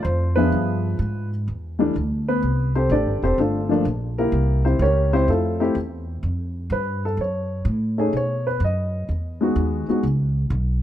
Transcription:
Already playing: grand piano F4 A4
0.03 upright bass F2, grand piano C5
0.36 grand piano F3 B3 D4 F4 G#4 B4 E5
0.52 upright bass G2
0.99 upright bass G#2
1.48 upright bass E2
1.79 grand piano E3 G3 A3 D4
1.96 upright bass D2
2.28 grand piano B3 B4
2.42 upright bass C2
2.75 grand piano C4 G4 A4 C5
2.90 upright bass A1, grand piano D4 G4 A4 D5
3.06 upright bass G1
3.22 upright bass E1, grand piano C4 G4 A4 C5
3.38 upright bass G1, grand piano A3 D4 F4 A4
3.69 grand piano F3 A3 A#3 D4
3.85 upright bass A#1
4.18 grand piano A#3 E4 G4 A#4
4.32 upright bass C2
4.65 grand piano C4 E4 G4 C5
4.79 upright bass C#2, grand piano C#4 G4 A#4 C#5
5.13 grand piano C4 E4 G4 C5
5.28 upright bass F2, grand piano A3 E4 F4 A4
5.60 grand piano A3 C4 E4 G4
5.75 upright bass E2
6.23 upright bass F2
6.70 upright bass G2, grand piano B4
7.05 grand piano A4
7.17 upright bass F#2, grand piano C#5
7.65 upright bass A2
7.98 grand piano A3 C#4 D#4 G#4
8.13 upright bass B2, grand piano C#5
8.47 grand piano B4
8.60 upright bass F#2
8.65 grand piano D#5
9.09 upright bass E2
9.41 grand piano G#3 B3 D#4 F#4
9.56 upright bass D#2
9.88 grand piano G#3 B3 D#4 F#4, muted upright bass stroke
10.03 upright bass C#2
10.50 upright bass B1

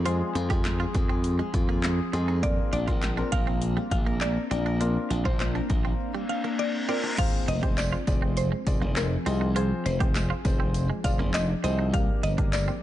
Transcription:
Already playing: slap bass F2, ambient pad F3 C4 G#4, qanun F4 G#4
0.05 grand piano G#3 C4 F4 G#4, qanun G#3, clean electric guitar F4, synth pluck C5, closed hi-hat
0.35 slap bass F2, qanun F4, muted clean electric guitar stroke, closed hi-hat
0.50 slap bass F2, grand piano G#3 C4 F4 G#4, clean electric guitar G4, qanun G#4, kick, closed hi-hat
0.65 snare, clap, closed hi-hat
0.80 clean electric guitar F4, qanun G#4
0.94 slap bass F2, qanun G#4, muted clean electric guitar stroke, kick, closed hi-hat
1.09 qanun G#3, clean electric guitar C4
1.24 closed hi-hat
1.39 clean electric guitar G#3, qanun G#3
1.54 slap bass F2, qanun F4, muted clean electric guitar stroke, kick, closed hi-hat
1.69 clean electric guitar A#3, qanun G#4
1.83 qanun G#4, muted clean electric guitar stroke, snare, clap, closed hi-hat
2.13 slap bass F2, grand piano G#3 C4 F4 G#4, clean electric guitar C4, qanun G#4, closed hi-hat
2.28 clean electric guitar D#4, qanun G#4
2.43 clean electric guitar A#3, qanun A#3, ambient pad A#3 D4, grand piano C4 D4 F4 A#4, synth pluck D5, kick, closed hi-hat
2.73 slap bass A#1, qanun D4, synth pluck D5, muted clean electric guitar stroke, closed hi-hat
2.87 slap bass A#1, grand piano C4 D4 F4 A#4, clean electric guitar F4, qanun A#4, kick, closed hi-hat
3.02 snare, clap, closed hi-hat
3.17 grand piano C4 D4 F4 A#4, clean electric guitar D4, qanun A#4
3.32 slap bass A#1, qanun A#4, synth pluck F5, muted clean electric guitar stroke, kick, closed hi-hat
3.47 qanun A#3, clean electric guitar C4
3.62 closed hi-hat
3.77 clean electric guitar G3, qanun A#3
3.91 slap bass A#1, qanun D4, synth pluck F5, muted clean electric guitar stroke, kick, closed hi-hat
4.06 clean electric guitar A#3, qanun A#4
4.21 qanun A#4, synth pluck D5, muted clean electric guitar stroke, snare, clap, closed hi-hat
4.51 slap bass A#1, clean electric guitar C4, qanun A#4, synth pluck D5, closed hi-hat
4.66 clean electric guitar D4, qanun A#4
4.80 qanun A#3, clean electric guitar A#3, grand piano C4 D4 F4 A#4, closed hi-hat
5.10 slap bass A#1, qanun D4, muted clean electric guitar stroke, closed hi-hat
5.25 slap bass A#1, grand piano C4 D4 F4 C5, clean electric guitar F4, qanun A#4, synth pluck C5, kick
5.40 synth pluck C5, snare, clap, closed hi-hat
5.55 clean electric guitar D4, qanun A#4
5.70 slap bass A#1, qanun A#4, muted clean electric guitar stroke, kick, closed hi-hat
5.85 qanun A#3, clean electric guitar C4
6.00 reverse cymbal
6.14 clean electric guitar G3, qanun A#3
6.29 qanun D4, synth pluck F5, muted clean electric guitar stroke
6.44 clean electric guitar A#3, qanun A#4
6.59 qanun A#4, synth pluck D5, muted clean electric guitar stroke
6.88 grand piano C4 D4 F4 A#4, clean electric guitar C4, qanun A#4, synth pluck D5
7.03 clean electric guitar D4, qanun A#4
7.18 ambient pad F3 C4 G#4, grand piano C4 F4 G#4 C5, clean electric guitar F4, synth pluck F5, kick, closed hi-hat, crash, tambourine, impact
7.48 slap bass F1, synth pluck D#5, muted clean electric guitar stroke, closed hi-hat
7.63 grand piano C4 F4 G#4 C5, clean electric guitar G4, kick, closed hi-hat
7.78 synth pluck D5, snare, clap, closed hi-hat, tambourine
7.93 clean electric guitar F4
8.07 slap bass F1, grand piano C4 F4 G#4 D5, muted clean electric guitar stroke, kick, closed hi-hat, tambourine
8.22 clean electric guitar C4
8.37 synth pluck C5, closed hi-hat, tambourine
8.52 clean electric guitar G#3
8.67 slap bass F1, grand piano C4 F4 G#4 D5, muted clean electric guitar stroke, kick, closed hi-hat, tambourine
8.82 slap bass F1, clean electric guitar A#3
8.96 synth pluck A#4, muted clean electric guitar stroke, snare, clap, closed hi-hat, tambourine
9.26 slap bass C2, grand piano C4 F4 G#4 D#5, clean electric guitar C4, closed hi-hat, tambourine
9.41 clean electric guitar D#4
9.56 grand piano C4 F4 G#4 C5, ambient pad D4, clean electric guitar F4, synth pluck G#4, closed hi-hat
9.86 slap bass F1, synth pluck C5, muted clean electric guitar stroke, closed hi-hat, tambourine
10.00 grand piano C4 F4 G#4 C5, clean electric guitar G4, kick, closed hi-hat
10.15 snare, clap, closed hi-hat, tambourine
10.30 clean electric guitar F4
10.45 slap bass F1, grand piano C4 F4 G#4 C5, muted clean electric guitar stroke, kick, closed hi-hat, tambourine
10.60 clean electric guitar C4
10.74 closed hi-hat, tambourine
10.90 clean electric guitar G#3
11.04 slap bass F1, grand piano C4 F4 G#4 D5, synth pluck F5, muted clean electric guitar stroke, kick, closed hi-hat, tambourine
11.19 slap bass F1, clean electric guitar A#3
11.34 synth pluck D#5, muted clean electric guitar stroke, snare, clap, closed hi-hat, tambourine
11.63 slap bass C2, grand piano C4 F4 G#4 C5, clean electric guitar C4, synth pluck D#5, closed hi-hat, tambourine
11.79 clean electric guitar D#4
11.93 clean electric guitar G3, ambient pad G3 A#4, grand piano A#3 D4 G4 A#4, synth pluck F5, kick, closed hi-hat, tambourine
12.23 slap bass G1, synth pluck D#5, muted clean electric guitar stroke, closed hi-hat, tambourine
12.38 grand piano A#3 D4 G4 A#4, clean electric guitar D4, kick, closed hi-hat
12.53 synth pluck D5, snare, clap, closed hi-hat, tambourine
12.68 clean electric guitar C4

